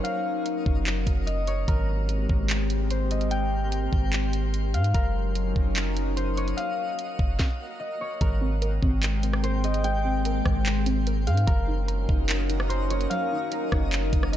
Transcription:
0.00 1.65 F#3 medium
0.00 4.91 A#3 medium
0.00 1.65 C#4 medium
0.00 1.65 D#4 medium
0.00 1.65 F#4 medium
0.00 0.53 A#4 loud
0.00 1.65 A#4 medium
0.00 1.47 C#5 medium
0.00 1.65 D#5 medium
0.00 1.70 F5 loud
0.05 closed hi-hat medium
0.46 closed hi-hat medium
0.66 1.05 F#1 loud
0.66 kick medium
0.87 clap loud
0.87 closed hi-hat medium
1.07 1.66 F#1 loud
1.07 kick loud
1.07 closed hi-hat medium
1.27 3.05 D#5 medium
1.27 closed hi-hat medium
1.47 2.97 C#5 medium
1.47 closed hi-hat medium
1.68 2.27 G#1 loud
1.68 4.91 G#3 medium
1.68 4.91 C4 medium
1.68 4.91 G4 medium
1.68 3.80 A#4 loud
1.68 4.91 C5 medium
1.68 kick loud
1.68 closed hi-hat medium
2.09 closed hi-hat medium
2.29 3.89 G#1 loud
2.29 kick medium
2.50 clap loud
2.50 closed hi-hat medium
2.70 closed hi-hat medium
2.91 4.89 C5 medium
2.91 closed hi-hat medium
3.11 4.90 D#5 medium
3.11 closed hi-hat medium
3.21 closed hi-hat soft
3.31 4.86 G5 loud
3.31 closed hi-hat medium
3.72 closed hi-hat medium
3.93 4.76 G#1 loud
3.93 kick medium
4.13 clap loud
4.13 closed hi-hat medium
4.33 closed hi-hat medium
4.54 closed hi-hat medium
4.74 4.94 G#2 loud
4.74 6.41 F5 medium
4.74 closed hi-hat medium
4.84 closed hi-hat soft
4.94 5.53 F#1 loud
4.94 7.37 F#3 medium
4.94 8.18 A#3 medium
4.94 7.37 C#4 medium
4.94 7.37 D#4 medium
4.94 8.18 F#4 medium
4.94 7.06 A#4 loud
4.94 7.37 A#4 medium
4.94 8.18 D#5 medium
4.94 kick loud
4.94 closed hi-hat medium
5.35 closed hi-hat medium
5.56 6.54 F#1 loud
5.56 kick medium
5.76 clap loud
5.76 closed hi-hat medium
5.97 closed hi-hat medium
6.17 6.44 C5 medium
6.17 closed hi-hat medium
6.37 8.01 C#5 medium
6.37 closed hi-hat medium
6.48 closed hi-hat soft
6.57 8.23 F5 loud
6.57 closed hi-hat medium
6.99 closed hi-hat medium
7.19 7.39 F#1 loud
7.19 kick medium
7.39 kick loud
7.39 snare loud
7.80 9.58 D#5 medium
8.01 9.50 C#5 medium
8.21 8.80 G#1 loud
8.21 11.44 G#3 medium
8.21 9.44 G#3 medium
8.21 14.37 A#3 medium
8.21 11.44 C4 medium
8.21 11.44 G4 medium
8.21 10.33 A#4 loud
8.21 11.44 C5 medium
8.21 11.44 G5 loud
8.21 kick loud
8.21 closed hi-hat medium
8.41 8.81 C4 medium
8.62 9.42 A#4 loud
8.62 closed hi-hat medium
8.82 10.42 G#1 loud
8.82 9.22 C4 medium
8.82 kick medium
9.03 clap loud
9.03 closed hi-hat medium
9.23 10.04 C4 medium
9.23 closed hi-hat medium
9.33 cross-stick loud
9.43 10.25 A#4 medium
9.43 11.42 C5 medium
9.43 closed hi-hat medium
9.64 10.86 G#4 loud
9.64 11.43 D#5 medium
9.64 closed hi-hat medium
9.74 closed hi-hat soft
9.84 11.07 G#3 medium
9.84 11.39 G5 loud
9.84 closed hi-hat medium
10.05 10.44 C4 medium
10.25 11.06 A#4 loud
10.25 closed hi-hat medium
10.45 11.29 G#1 loud
10.45 10.85 C4 medium
10.45 kick medium
10.45 cross-stick loud
10.66 clap loud
10.66 closed hi-hat loud
10.86 11.48 C4 medium
10.86 closed hi-hat medium
11.07 11.48 A#4 loud
11.07 closed hi-hat medium
11.27 11.47 G#2 loud
11.27 11.48 G#4 loud
11.27 12.93 F5 medium
11.27 closed hi-hat medium
11.37 closed hi-hat soft
11.47 12.06 F#1 loud
11.47 14.37 F#3 medium
11.47 12.70 F#3 loud
11.47 14.37 C#4 medium
11.47 14.37 D#4 medium
11.47 14.37 F#4 medium
11.47 13.59 A#4 loud
11.47 14.37 A#4 medium
11.47 14.37 D#5 medium
11.47 kick loud
11.47 closed hi-hat medium
11.68 12.08 D#4 medium
11.88 12.69 A#5 loud
11.88 closed hi-hat medium
12.09 13.07 F#1 loud
12.09 12.48 D#4 medium
12.09 kick loud
12.29 clap loud
12.29 closed hi-hat medium
12.50 13.31 D#4 medium
12.50 closed hi-hat medium
12.60 cross-stick loud
12.69 12.96 C5 medium
12.69 13.51 A#5 loud
12.69 closed hi-hat medium
12.90 14.13 F#4 medium
12.90 14.37 C#5 medium
12.90 closed hi-hat medium
13.01 closed hi-hat soft
13.10 14.33 F#3 loud
13.10 14.37 F5 loud
13.10 closed hi-hat medium
13.32 13.71 D#4 medium
13.52 14.32 A#5 loud
13.52 closed hi-hat medium
13.72 14.11 F#1 loud
13.72 14.11 D#4 medium
13.72 kick medium
13.72 cross-stick loud
13.93 clap loud
13.93 closed hi-hat medium
14.12 14.37 F#1 loud
14.12 14.37 D#4 medium
14.12 kick loud
14.12 closed hi-hat medium
14.23 cross-stick loud
14.32 14.37 D#5 medium
14.32 14.37 A#5 loud
14.32 closed hi-hat medium

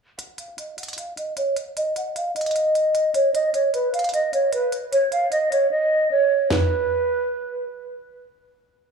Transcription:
0.19 0.37 F#5 medium
0.19 closed hi-hat medium
0.38 0.56 F5 medium
0.38 closed hi-hat medium
0.58 0.76 D#5 medium
0.58 closed hi-hat medium
0.78 0.96 F#5 medium
0.78 closed hi-hat medium
0.83 closed hi-hat medium
0.88 closed hi-hat medium
0.93 closed hi-hat medium
0.98 1.16 F5 medium
0.98 closed hi-hat medium
1.17 1.35 D#5 medium
1.17 closed hi-hat medium
1.37 1.55 C#5 medium
1.37 closed hi-hat medium
1.56 closed hi-hat medium
1.77 1.95 D#5 loud
1.77 closed hi-hat medium
1.96 2.15 F#5 medium
1.96 closed hi-hat medium
2.16 2.34 F5 medium
2.16 closed hi-hat medium
2.36 3.11 D#5 medium
2.36 closed hi-hat medium
2.41 closed hi-hat medium
2.46 closed hi-hat medium
2.51 closed hi-hat medium
2.56 closed hi-hat medium
2.75 closed hi-hat medium
2.95 closed hi-hat medium
3.14 3.33 C#5 medium
3.14 closed hi-hat medium
3.34 3.52 D#5 loud
3.34 closed hi-hat medium
3.54 3.72 C#5 medium
3.54 closed hi-hat medium
3.74 3.92 B4 medium
3.74 closed hi-hat medium
3.94 4.12 F5 medium
3.94 closed hi-hat medium
3.99 closed hi-hat medium
4.04 closed hi-hat medium
4.09 closed hi-hat medium
4.13 4.31 D#5 medium
4.13 closed hi-hat medium
4.33 4.51 C#5 medium
4.33 closed hi-hat medium
4.53 4.71 B4 medium
4.53 closed hi-hat medium
4.72 closed hi-hat medium
4.92 5.10 C#5 loud
4.92 closed hi-hat medium
5.12 5.30 F5 medium
5.12 closed hi-hat medium
5.32 5.50 D#5 medium
5.32 closed hi-hat medium
5.52 5.70 C#5 medium
5.52 closed hi-hat medium
5.71 6.08 D#5 medium
6.11 6.48 C#5 medium
6.50 7.65 B4 medium
6.50 snare loud
6.50 floor tom loud

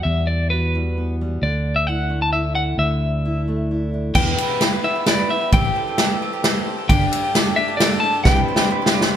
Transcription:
0.00 0.54 E3 soft
0.00 0.96 B3 soft
0.00 0.28 E5 medium
0.04 1.42 E2 medium
0.04 1.39 E2 medium
0.04 0.73 G3 soft
0.27 0.50 D5 medium
0.50 1.40 F#4 medium
0.50 1.15 B4 medium
0.74 1.42 E3 soft
0.74 1.20 G3 soft
0.98 1.43 B3 soft
1.21 1.43 G3 soft
1.42 2.76 D2 medium
1.42 2.78 D3 medium
1.42 2.10 D4 soft
1.42 1.74 D5 medium
1.76 1.87 E5 medium
1.87 2.33 E4 medium
1.87 2.22 F#5 medium
2.10 2.76 A3 soft
2.10 2.55 D4 soft
2.22 2.32 A5 medium
2.33 3.24 E4 medium
2.33 2.55 E5 medium
2.55 2.76 D4 soft
2.55 2.78 F#5 medium
2.78 4.12 D2 medium
2.78 4.16 D3 medium
2.78 3.47 D4 soft
2.78 3.89 E5 medium
3.25 3.70 E4 medium
3.48 4.13 A3 soft
3.48 3.92 D4 soft
3.71 5.53 E4 soft
3.94 4.13 D4 soft
4.14 4.60 E2 medium
4.14 4.33 E2 medium
4.14 4.61 B2 medium
4.14 4.59 E3 medium
4.14 4.61 G3 medium
4.14 4.60 B3 medium
4.14 4.48 E4 medium
4.14 4.62 E4 medium
4.14 4.80 G5 medium
4.14 kick medium
4.14 crash medium
4.26 4.59 G4 medium
4.37 4.71 B4 medium
4.37 ride medium
4.49 4.83 E4 medium
4.59 4.83 E3 soft
4.59 4.83 G3 medium
4.59 4.82 B3 medium
4.59 4.81 E4 medium
4.59 4.94 G4 medium
4.59 snare medium
4.59 ride soft
4.72 5.06 B4 medium
4.82 5.05 E3 soft
4.82 5.06 G3 soft
4.82 5.07 B3 soft
4.82 5.06 E4 soft
4.82 5.18 E4 medium
4.82 5.08 E5 medium
4.96 5.29 G4 medium
5.06 5.29 E3 medium
5.06 5.29 G3 medium
5.06 5.28 B3 medium
5.06 5.27 E4 medium
5.06 5.40 B4 medium
5.06 5.29 D5 medium
5.06 snare medium
5.06 ride medium
5.19 5.53 E4 medium
5.29 5.51 E3 soft
5.29 5.52 G3 soft
5.29 5.52 B3 soft
5.29 5.52 E4 soft
5.29 5.53 G4 medium
5.29 5.53 E5 medium
5.41 5.53 B4 medium
5.52 5.70 A1 medium
5.52 5.98 A2 medium
5.52 5.96 E3 medium
5.52 5.98 G3 medium
5.52 5.86 C4 medium
5.52 5.98 C4 medium
5.52 5.99 G4 medium
5.52 6.17 G5 medium
5.52 kick medium
5.52 ride soft
5.65 5.98 G4 medium
5.76 6.10 A4 medium
5.88 6.21 C4 medium
5.97 6.41 E3 soft
5.97 6.43 G3 medium
5.97 6.43 C4 medium
5.97 6.32 G4 medium
5.97 6.45 G4 medium
5.97 snare medium
5.97 ride soft
6.11 6.44 A4 medium
6.22 6.67 C4 medium
6.33 6.78 G4 medium
6.42 6.66 E3 medium
6.42 6.66 G3 medium
6.42 6.65 C4 medium
6.42 6.64 G4 medium
6.42 6.77 A4 medium
6.42 snare medium
6.42 ride medium
6.65 6.86 G3 soft
6.65 6.89 C4 soft
6.65 6.88 G4 medium
6.78 6.89 A4 medium
6.87 8.21 G1 medium
6.87 7.06 G1 medium
6.87 8.21 G2 medium
6.87 7.33 G3 medium
6.87 8.22 G3 medium
6.87 7.33 A3 medium
6.87 8.22 D4 medium
6.87 7.35 D4 medium
6.87 7.22 D4 medium
6.87 7.36 G4 medium
6.87 8.22 A4 medium
6.87 8.22 D5 medium
6.87 7.59 G5 medium
6.87 kick medium
6.87 ride medium
7.01 7.33 G4 medium
7.12 7.44 A4 medium
7.12 ride medium
7.24 7.56 D4 medium
7.33 7.56 G3 medium
7.33 7.57 A3 soft
7.33 7.56 D4 medium
7.33 7.67 G4 medium
7.33 7.54 G4 medium
7.33 snare medium
7.33 ride medium
7.46 7.79 A4 medium
7.55 7.77 A3 soft
7.55 7.78 D4 soft
7.55 7.90 D4 medium
7.55 7.79 G4 soft
7.55 7.77 E5 medium
7.68 8.02 G4 medium
7.77 8.01 G3 medium
7.77 8.02 A3 medium
7.77 8.01 D4 medium
7.77 8.00 G4 medium
7.77 8.13 A4 medium
7.77 8.02 D5 medium
7.77 snare medium
7.77 ride medium
7.91 8.25 D4 medium
8.00 8.24 A3 soft
8.00 8.23 D4 soft
8.00 8.24 G4 medium
8.00 8.25 G4 medium
8.00 8.23 A5 medium
8.14 8.25 A4 medium
8.23 9.16 C2 medium
8.23 8.42 C2 medium
8.23 8.69 C3 medium
8.23 9.16 C3 medium
8.23 8.67 E3 medium
8.23 8.69 G3 medium
8.23 9.16 G3 medium
8.23 8.70 D4 medium
8.23 8.58 D4 medium
8.23 9.16 E4 medium
8.23 8.70 G4 medium
8.23 9.16 C5 medium
8.23 9.16 D5 medium
8.23 9.16 G5 medium
8.23 kick loud
8.23 snare soft
8.37 8.69 E4 medium
8.48 8.81 C5 medium
8.56 8.92 D4 medium
8.56 snare medium
8.69 9.13 E3 soft
8.69 9.14 G3 medium
8.69 9.15 D4 medium
8.69 9.03 E4 medium
8.69 9.16 G4 medium
8.82 9.14 C5 medium
8.86 snare medium
8.93 9.16 D4 medium
9.01 9.16 E4 medium
9.01 snare medium

